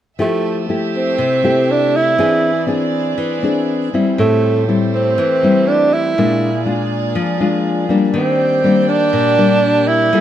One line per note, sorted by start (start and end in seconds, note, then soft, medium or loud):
0.18 1.16 F3 medium
0.18 2.16 A3 medium
0.18 0.65 A3 medium
0.18 0.67 A3 medium
0.18 0.65 E4 soft
0.18 2.16 G4 medium
0.18 0.66 G4 medium
0.18 2.16 E5 medium
0.69 1.40 A3 soft
0.69 1.40 E4 medium
0.69 1.40 G4 medium
0.97 1.73 C4 medium
1.18 2.16 C3 medium
1.44 2.14 A3 medium
1.44 2.15 E4 medium
1.44 2.15 G4 medium
1.71 1.98 D4 medium
1.96 2.70 E4 medium
2.18 3.15 E3 medium
2.18 4.15 C4 medium
2.18 2.50 C4 medium
2.18 2.51 D4 medium
2.18 4.15 E4 medium
2.18 4.15 G#4 medium
2.18 2.51 G#4 medium
2.18 4.15 D5 medium
2.67 3.38 C4 medium
2.67 3.38 D4 medium
2.67 3.39 G#4 soft
3.18 3.93 E3 medium
3.43 3.88 C4 medium
3.43 3.89 D4 medium
3.43 3.89 G#4 medium
3.93 4.63 G3 medium
3.93 4.64 C4 medium
3.93 4.64 E4 medium
4.17 5.15 A2 medium
4.17 6.14 A3 medium
4.17 4.65 A3 medium
4.17 6.14 G4 medium
4.17 6.14 C5 medium
4.68 5.17 G3 medium
4.68 5.17 C4 medium
4.68 5.17 E4 medium
4.95 5.69 C4 medium
5.18 6.14 E3 medium
5.43 6.13 G3 medium
5.43 6.13 C4 medium
5.43 6.13 E4 medium
5.68 5.95 D4 medium
5.93 6.67 E4 medium
6.17 7.14 A#2 medium
6.17 6.49 G#3 soft
6.17 8.13 A#3 medium
6.17 6.49 D4 medium
6.17 8.13 G#4 medium
6.17 8.12 D5 medium
6.66 7.36 G#3 soft
6.66 7.36 D4 soft
6.66 7.37 F4 medium
7.15 8.12 F3 medium
7.40 7.86 G#3 soft
7.40 7.86 D4 soft
7.40 7.86 F4 medium
7.89 8.60 G3 medium
7.89 8.60 A#3 medium
7.89 8.60 D4 medium
8.13 9.11 D#3 medium
8.13 8.86 C4 medium
8.13 10.21 G4 medium
8.13 10.11 D5 medium
8.13 10.10 G5 medium
8.64 9.35 G3 medium
8.64 9.35 A#3 soft
8.64 9.35 D4 medium
8.89 9.89 D4 medium
9.13 10.10 A#2 medium
9.38 10.09 G3 medium
9.38 10.09 A#3 medium
9.38 10.09 D4 medium
9.88 10.21 E4 medium
10.13 10.21 G3 medium
10.13 10.21 A#3 medium
10.13 10.21 A#3 soft
10.13 10.21 F4 medium
10.13 10.21 A4 medium
10.13 10.21 F5 medium